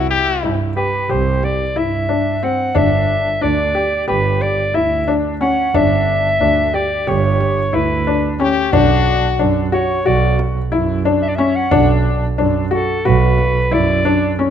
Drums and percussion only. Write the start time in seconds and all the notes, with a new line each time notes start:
0.10 frame drum
1.43 frame drum
2.43 frame drum
2.76 frame drum
3.09 frame drum
4.42 frame drum
5.08 frame drum
5.74 frame drum
7.41 frame drum
8.07 frame drum
8.73 frame drum
10.39 frame drum
11.71 frame drum
13.05 frame drum
13.38 frame drum
13.72 frame drum